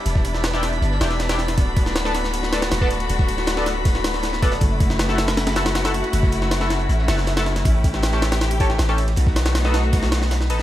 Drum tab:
RD |x-x-x-x---x-xx-x|x-x-x-x-x-xxx-xx|x-x-x-x-x-x-x-x-|x-x-x-xxxxxxxxxx|
HH |x-x-x-xxx-o-x-x-|x-x-x-xxx-x-x-x-|x-x-x---x-xxx-xx|x-x-x-xxx-x-x-x-|
SD |-o-oooo--ooooooo|---ooooo-oooo--o|-o-oooo-oooooooo|---ooooooooooo-o|
BD |-o--------------|o-o----------o--|-o------o-----o-|o-o-------------|

RD |x-x-x-x---x-xx-x|x-x-x-xxxxx-x-xx|x-xxx-x-x-x-x-x-|
HH |x-x-x-xxx-o-x-x-|x-x-x-xxx-x-x-x-|x-x-x-xxxxo-x-xx|
SD |-o-oooo--ooooooo|---oooooo--ooo-o|-oooooo-oooooo--|
BD |-o--------------|o-o-------o-----|-o------o-------|